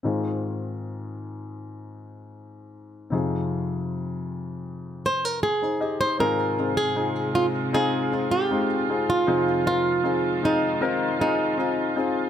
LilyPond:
<<
  \new Staff \with { instrumentName = "Nylon-string guitar" } { \time 4/4 \key aes \major \tempo 4 = 78 r1 | r2 r8 c''16 bes'16 aes'8. c''16 | bes'8. aes'8. f'8 aes'8. g'4 f'16~ | f'8 f'4 ees'4 ees'4 r8 | }
  \new Staff \with { instrumentName = "Grand piano" } { \time 4/4 \key aes \major << { r1 | r2. r16 <ees' c''>16 <g' ees''>16 <ees' c''>16~ | <ees' c''>16 r2. r8. | r1 | } \\ { <c' ees' f' aes'>1 | <c' ees' f' aes'>1 | <c' ees' f' aes'>8 <c' ees' f' aes'>8 <c' ees' f' aes'>8 <c' ees' f' aes'>8 <c' ees' f' aes'>8 <c' ees' f' aes'>8 <aes c' ees' f'>8 <c' ees' f' aes'>8 | <c' ees' f' aes'>8 <c' ees' f' bes'>8 <c' ees' f' aes'>8 <c' ees' f' aes'>8 <c' ees' f' bes'>8 <c' ees' f' aes'>8 <c' ees' f' aes'>8 <c' ees' f' aes'>8 | } >> }
  \new Staff \with { instrumentName = "Grand piano" } { \clef bass \time 4/4 \key aes \major <aes, ees>1 | <f, c>1 | <aes, ees>1 | <f, c>1 | }
  \new Staff \with { instrumentName = "String section" } { \clef bass \time 4/4 \key aes \major << { r1 | r1 | f'1~ | f'1 | } \\ { r1 | r1 | <c aes>1 | <ees aes>1 | } >> }
>>